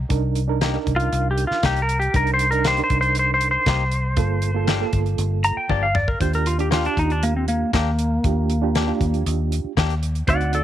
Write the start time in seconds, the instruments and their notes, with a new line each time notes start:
0.09 fingered electric bass C2, reed electric piano D4 D#4 A#4, kick, closed hi-hat
0.35 closed hi-hat
0.48 reed electric piano D4 D#4 A#4
0.61 clean electric guitar A#3 D#4 G4, snare, closed hi-hat
0.73 reed electric piano D4 D#4 A#4
0.87 fingered electric bass C2, kick, closed hi-hat
0.96 electric slide guitar F4, closed hi-hat
1.12 fingered electric bass C2, closed hi-hat
1.31 electric slide guitar G4
1.38 closed hi-hat
1.47 electric slide guitar F4, muted fingered electric bass stroke, snare
1.63 fingered electric bass C2, clean electric guitar A#3 D#4 G4, electric slide guitar G4, kick, snare, closed hi-hat
1.76 closed hi-hat
1.82 electric slide guitar A#4
1.89 closed hi-hat
2.00 electric slide guitar G4, closed hi-hat
2.14 fingered electric bass C2, reed electric piano D4 D#4 A#4, electric slide guitar A#4, kick, closed hi-hat
2.27 closed hi-hat
2.34 electric slide guitar C5
2.39 closed hi-hat
2.51 reed electric piano D4 D#4 A#4, electric slide guitar A#4, closed hi-hat
2.64 clean electric guitar A#3 D#4 G4, electric slide guitar C5, snare, closed hi-hat
2.77 reed electric piano D4 D#4 A#4, closed hi-hat
2.84 electric slide guitar C5
2.90 fingered electric bass C2, kick, closed hi-hat
3.01 electric slide guitar C5, closed hi-hat
3.15 closed hi-hat
3.19 electric slide guitar C5
3.34 electric slide guitar C5
3.41 closed hi-hat
3.51 electric slide guitar C5
3.66 fingered electric bass C2, clean electric guitar A#3 D#4 G4, kick, snare, closed hi-hat
3.91 closed hi-hat
4.17 fingered electric bass G1, reed electric piano A#3 F4 A4, kick, closed hi-hat
4.42 closed hi-hat
4.54 reed electric piano A#3 F4 A4
4.67 clean electric guitar F3 A#3 D4 G4, snare, closed hi-hat
4.80 reed electric piano A#3 F4 A4
4.93 fingered electric bass G1, kick, closed hi-hat
5.06 closed hi-hat
5.18 fingered electric bass G1, closed hi-hat
5.44 electric slide guitar A#5, closed hi-hat
5.57 electric slide guitar G5, muted fingered electric bass stroke
5.69 fingered electric bass G1, clean electric guitar F3 A#3 D4 G4, electric slide guitar D5, kick, high tom
5.83 electric slide guitar F5
5.95 electric slide guitar D5, mid tom
6.08 electric slide guitar A#4, kick
6.20 fingered electric bass D#2, reed electric piano D4 F4 G4, electric slide guitar C5, kick, closed hi-hat
6.33 electric slide guitar A#4, closed hi-hat
6.46 electric slide guitar F4, closed hi-hat
6.59 reed electric piano D4 F4 G4, electric slide guitar G4, closed hi-hat
6.71 clean electric guitar A#3 D4 G4, electric slide guitar F4, snare, closed hi-hat
6.84 reed electric piano D4 F4 G4, electric slide guitar D4, closed hi-hat
6.97 fingered electric bass D#2, electric slide guitar D#4, kick, closed hi-hat
7.10 electric slide guitar D4, closed hi-hat
7.23 electric slide guitar A#3, closed hi-hat
7.36 electric slide guitar C4
7.48 electric slide guitar A#3, closed hi-hat
7.73 fingered electric bass D#2, clean electric guitar A#3 D4 G4, electric slide guitar A#3, kick, snare, closed hi-hat
7.99 closed hi-hat
8.24 fingered electric bass D#2, reed electric piano D4 F4 G4, kick, closed hi-hat
8.50 closed hi-hat
8.62 reed electric piano D4 F4 G4
8.75 clean electric guitar A#3 D4 G4, snare, closed hi-hat
8.87 reed electric piano D4 F4 G4
9.01 fingered electric bass D#2, kick, closed hi-hat
9.14 closed hi-hat
9.26 fingered electric bass D#2, closed hi-hat
9.52 closed hi-hat
9.64 muted fingered electric bass stroke
9.77 fingered electric bass D#2, clean electric guitar A#3 D4 G4, kick, snare, closed hi-hat
9.90 closed hi-hat
10.03 closed hi-hat
10.15 closed hi-hat
10.27 fingered electric bass D2, reed electric piano C4 D#4 F#4, electric slide guitar D5 F#5, kick, closed hi-hat
10.41 closed hi-hat
10.53 electric slide guitar A4 D5, closed hi-hat